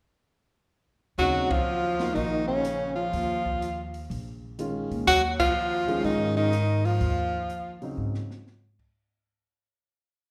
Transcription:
1.18 upright bass D#2, grand piano C#3 F#3 C4 D#4, alto saxophone F#3, tenor saxophone F#4, open hi-hat
1.50 alto saxophone F3, tenor saxophone F4, kick, ride
1.99 grand piano A#3 D#4 F4 F#4, snare, open hi-hat
2.13 upright bass A#1, alto saxophone D#3, tenor saxophone D#4, open hi-hat
2.46 alto saxophone C#3, tenor saxophone C#4
2.65 closed hi-hat
2.96 alto saxophone F3, tenor saxophone F4
3.13 upright bass D#2, open hi-hat
3.46 kick
3.62 closed hi-hat
3.94 open hi-hat
4.10 upright bass A#1, open hi-hat
4.58 grand piano D#3 G#3 C#4 F4, closed hi-hat
4.91 upright bass A#2, open hi-hat
5.07 upright bass D#2, alto saxophone F#3, tenor saxophone F#4, open hi-hat
5.39 alto saxophone F3, tenor saxophone F4, kick, ride
5.87 grand piano D#3 G#3 C#4 F4, open hi-hat
6.04 upright bass G#2, alto saxophone D#3, tenor saxophone D#4, open hi-hat
6.37 alto saxophone D#3, tenor saxophone D#4
6.53 closed hi-hat
6.85 alto saxophone F3, tenor saxophone F4, open hi-hat
7.00 upright bass D#2, open hi-hat
7.50 closed hi-hat
7.82 grand piano C#3 F#3 C4 D#4, open hi-hat
7.97 upright bass G#2
8.14 snare
8.31 snare
8.47 snare
8.79 kick, crash

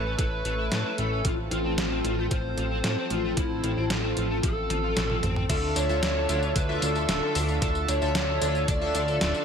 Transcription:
Already playing: analog synth bass A1, analog synth pad A3 A4 B4 C#5 E5, lead electric guitar B4
0.05 overdriven electric guitar C#4
0.19 analog synth bass A1, overdriven electric guitar A3, lead electric guitar B4, kick, closed hi-hat
0.45 analog synth bass A1, overdriven electric guitar A3, closed hi-hat
0.58 overdriven electric guitar E4
0.72 analog synth bass A2, overdriven electric guitar A3, snare, closed hi-hat
0.85 overdriven electric guitar E4
0.98 analog synth bass A1, overdriven electric guitar A3, lead electric guitar A4, closed hi-hat
1.12 overdriven electric guitar C#4
1.25 analog synth bass A1, analog synth pad F3 C4 A4, overdriven electric guitar F3, lead electric guitar F4, kick, closed hi-hat
1.51 analog synth bass A1, overdriven electric guitar F3, lead electric guitar F4, closed hi-hat
1.64 analog synth bass A1, overdriven electric guitar C4
1.78 analog synth bass A1, overdriven electric guitar F3, snare, closed hi-hat
1.91 overdriven electric guitar C4
2.04 analog synth bass A1, overdriven electric guitar F3, closed hi-hat
2.18 overdriven electric guitar A3
2.31 analog synth bass A1, overdriven electric guitar F3, lead electric guitar C5, kick, closed hi-hat
2.57 analog synth bass A1, overdriven electric guitar F3, closed hi-hat
2.71 overdriven electric guitar C4
2.84 analog synth bass A2, overdriven electric guitar F3, snare, closed hi-hat
2.97 overdriven electric guitar C4
3.10 analog synth bass A1, overdriven electric guitar F3, lead electric guitar F4, closed hi-hat
3.24 overdriven electric guitar A3
3.37 analog synth bass A1, overdriven electric guitar F3, lead electric guitar E4, kick, closed hi-hat
3.64 analog synth bass A1, overdriven electric guitar F3, closed hi-hat
3.77 analog synth bass A1, overdriven electric guitar C4
3.90 analog synth bass A1, overdriven electric guitar F3, lead electric guitar F4, snare, closed hi-hat
4.03 overdriven electric guitar C4
4.17 analog synth bass A1, overdriven electric guitar F3, closed hi-hat
4.30 overdriven electric guitar A3
4.43 analog synth bass A1, overdriven electric guitar F3, lead electric guitar A4, kick, closed hi-hat
4.70 analog synth bass A1, overdriven electric guitar F3, closed hi-hat, high tom
4.83 overdriven electric guitar F4
4.96 analog synth bass A1, overdriven electric guitar F3, snare, closed hi-hat, mid tom
5.10 overdriven electric guitar F3, mid tom
5.23 analog synth bass A1, overdriven electric guitar C4, closed hi-hat, mid tom
5.36 overdriven electric guitar C4, mid tom
5.49 analog synth bass D2, analog polysynth D3 D4 F4 A4 E5, analog synth pad D3 D4 F4 A4 E5, overdriven electric guitar D4, lead electric guitar A4, kick, closed hi-hat, crash, tambourine
5.76 analog synth bass D2, overdriven electric guitar D4, lead electric guitar C#5, closed hi-hat, tambourine
5.89 analog synth bass D2, analog polysynth D3 D4 F4 A4 E5, overdriven electric guitar A4, tambourine
6.03 analog synth bass D2, overdriven electric guitar D4, snare, closed hi-hat, tambourine
6.16 overdriven electric guitar A4
6.29 analog synth bass D2, analog polysynth D3 D4 F4 A4 E5, overdriven electric guitar D4, closed hi-hat, tambourine
6.43 overdriven electric guitar F4, tambourine
6.55 analog synth bass D2, overdriven electric guitar D4, lead electric guitar B4, kick, closed hi-hat, tambourine
6.69 analog polysynth D3 D4 F4 A4 E5
6.82 analog synth bass D2, overdriven electric guitar D4, lead electric guitar A4, closed hi-hat, tambourine
6.95 overdriven electric guitar A4, tambourine
7.09 analog synth bass D1, analog polysynth D3 D4 F4 A4 E5, overdriven electric guitar D4, snare, closed hi-hat, tambourine
7.22 overdriven electric guitar A4
7.35 analog synth bass D2, overdriven electric guitar D4, open hi-hat, tambourine
7.49 overdriven electric guitar F4, tambourine
7.62 analog synth bass D2, analog polysynth D3 D4 F4 A4 E5, overdriven electric guitar D4, lead electric guitar A4, kick, closed hi-hat, tambourine
7.75 tambourine
7.88 analog synth bass D2, overdriven electric guitar D4, lead electric guitar C#5, closed hi-hat, tambourine
8.02 analog synth bass D2, analog polysynth D3 D4 F4 A4 E5, overdriven electric guitar A4, tambourine
8.15 analog synth bass D2, overdriven electric guitar D4, snare, closed hi-hat, tambourine
8.28 overdriven electric guitar A4
8.41 analog synth bass D2, analog polysynth D3 D4 F4 A4 E5, overdriven electric guitar D4, closed hi-hat, tambourine
8.55 overdriven electric guitar F4, tambourine
8.68 analog synth bass D2, overdriven electric guitar D4, lead electric guitar D5, kick, closed hi-hat, tambourine
8.81 analog polysynth D3 D4 F4 A4 E5
8.95 analog synth bass D2, overdriven electric guitar D4, lead electric guitar D5, closed hi-hat, tambourine
9.08 overdriven electric guitar A4, tambourine
9.21 analog synth bass D1, analog polysynth D3 D4 F4 A4 E5, overdriven electric guitar D4, snare, closed hi-hat, tambourine
9.34 overdriven electric guitar A4, tambourine

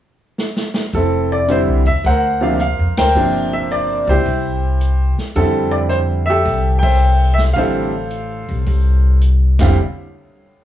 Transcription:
0.38 snare
0.57 snare
0.74 snare
0.93 upright bass F1, grand piano C4 E4 A4, kick, open hi-hat
1.32 grand piano D5
1.48 grand piano D3 G3 C4 E4 C5, closed hi-hat
1.67 upright bass C2
1.86 upright bass D#2, grand piano E5, open hi-hat
2.04 upright bass D2, grand piano A#4 C5 F#5, kick, open hi-hat
2.41 grand piano C3 F3 A#3 D4 F5
2.59 grand piano F5, closed hi-hat
2.79 upright bass F2
2.97 upright bass D2, grand piano A#4 C5 G5, snare, ride
3.15 upright bass G1, grand piano C3 F3 A#3 D4
3.53 grand piano E5
3.71 grand piano D5, closed hi-hat
4.07 upright bass C#2, grand piano E4 G4 C5, kick, open hi-hat
4.25 upright bass C2, kick, open hi-hat
4.81 closed hi-hat
5.18 muted upright bass stroke, snare
5.36 upright bass F2, grand piano D3 G3 C4 E4 A4, kick, open hi-hat
5.72 grand piano D5
5.90 grand piano C5, closed hi-hat
6.26 grand piano G4 E5
6.30 grand piano A4
6.45 upright bass C2, kick, open hi-hat
6.79 grand piano G5
6.83 grand piano C5 E5, kick, ride
7.34 grand piano E5, open hi-hat
7.38 snare
7.53 upright bass A1, grand piano D3 G3 F5, kick, open hi-hat
7.58 grand piano C4 E4 A4 C5
8.11 closed hi-hat
8.48 upright bass C2, open hi-hat
8.66 upright bass C2, kick, open hi-hat
9.21 closed hi-hat
9.59 upright bass F1, grand piano D3 G3 C4 E4 F5, kick, snare, crash

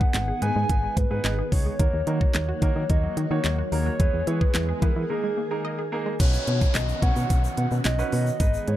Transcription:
Already playing: string machine D#3 G#3 B3 G#4, grand piano B3 D#4 G#4 B4, soft synth lead F#5
0.01 synth arpeggio sound G#4, kick
0.14 fm bass G#1, synth arpeggio sound D#5, soft synth lead F#5, snare, clap, closed hi-hat
0.28 synth arpeggio sound G#4
0.42 fm bass G#2, grand piano B3 D#4 G#4 B4, synth arpeggio sound B3, soft synth lead G#5, closed hi-hat
0.56 fm bass G#2, synth arpeggio sound G#3
0.69 fm bass G#1, synth arpeggio sound D#3, grand piano B3 D#4 G#4 B4, kick, closed hi-hat
0.83 synth arpeggio sound G#3
0.97 fm bass G#2, synth arpeggio sound B3, soft synth lead B4, kick, closed hi-hat
1.11 fm bass G#2, grand piano B3 D#4 G#4 B4, synth arpeggio sound G#4
1.24 fm bass G#1, synth arpeggio sound D#5, snare, clap, closed hi-hat
1.39 synth arpeggio sound G#4
1.52 fm bass C#2, grand piano B3 D#4 G#4 C#5, soft synth lead C#5, kick, open hi-hat
1.66 synth arpeggio sound G#3
1.79 fm bass D#2, synth arpeggio sound D#3, string machine F#3 A#3 F#4, grand piano A#3 D#4 F#4 A#4, kick, closed hi-hat, swell
1.93 fm bass D#2
2.07 fm bass D#3, grand piano A#3 D#4 F#4 A#4, closed hi-hat
2.21 synth arpeggio sound F#4, kick
2.34 fm bass D#2, synth arpeggio sound D#5, snare, clap, closed hi-hat
2.49 synth arpeggio sound F#4
2.62 fm bass D#3, grand piano A#3 D#4 F#4 A#4, synth arpeggio sound A#3, kick, closed hi-hat
2.76 fm bass D#3, synth arpeggio sound F#3
2.89 fm bass D#2, synth arpeggio sound D#3, grand piano A#3 D#4 F#4 C#5, soft synth lead D#5, kick, closed hi-hat
3.03 synth arpeggio sound F#3
3.17 fm bass D#3, synth arpeggio sound A#3, closed hi-hat
3.31 fm bass D#3, grand piano A#3 D#4 F#4 C#5, synth arpeggio sound F#4, soft synth lead C#5
3.44 fm bass D#2, synth arpeggio sound D#5, snare, clap, closed hi-hat
3.58 synth arpeggio sound F#4
3.72 fm bass D#2, grand piano A#3 D#4 F#4 A#4, soft synth lead C#5, open hi-hat
3.86 synth arpeggio sound F#3
3.99 fm bass E2, string machine E3 G#3 B3 G#4, synth arpeggio sound E3, grand piano B3 E4 G#4 B4, kick, closed hi-hat
4.13 fm bass E2
4.27 fm bass E3, grand piano B3 E4 G#4 C#5, soft synth lead B4, closed hi-hat
4.41 synth arpeggio sound G#4, kick
4.54 fm bass E2, synth arpeggio sound E5, snare, clap, closed hi-hat
4.69 synth arpeggio sound G#4
4.82 fm bass E3, grand piano B3 E4 G#4 B4, synth arpeggio sound B3, soft synth lead A#4, kick, closed hi-hat
4.96 fm bass E3, synth arpeggio sound G#3
5.09 string machine D#3 A#3, synth arpeggio sound D#3, grand piano A#3 D#4 G#4 A#4, soft synth lead G#4
5.24 synth arpeggio sound G#3
5.37 synth arpeggio sound A#3
5.51 grand piano A#3 D#4 G#4 A#4, synth arpeggio sound G#4
5.65 synth arpeggio sound D#5
5.79 synth arpeggio sound G#4
5.92 grand piano A#3 D#4 G#4 A#4
6.06 synth arpeggio sound G#3
6.19 fm bass B1, string machine D#3 B3 C#4 F#4, grand piano C#4 D#4 F#4 B4, soft synth lead C#5, kick, closed hi-hat, crash, downlifter, shaker
6.33 shaker
6.47 fm bass B2, closed hi-hat
6.61 kick, shaker
6.74 fm bass B1, soft synth lead D#5, snare, clap, closed hi-hat, shaker
6.89 shaker
7.02 fm bass B2, grand piano C#4 D#4 F#4 C#5, soft synth lead F#5, kick, closed hi-hat
7.16 fm bass B2, shaker
7.30 fm bass B1, kick, closed hi-hat, shaker
7.44 shaker
7.57 fm bass B2, soft synth lead F#5, closed hi-hat
7.71 fm bass B2, shaker
7.84 fm bass B1, soft synth lead D#5, snare, clap, closed hi-hat, shaker
7.98 grand piano C#4 D#4 F#4 B4, shaker
8.12 fm bass B2, soft synth lead D#5, open hi-hat, shaker
8.27 shaker
8.40 fm bass G#1, string machine G#3 B3 G#4, grand piano B3 D#4 G#4 B4, kick, closed hi-hat, shaker
8.54 shaker
8.68 fm bass G#2, soft synth lead C#5, closed hi-hat

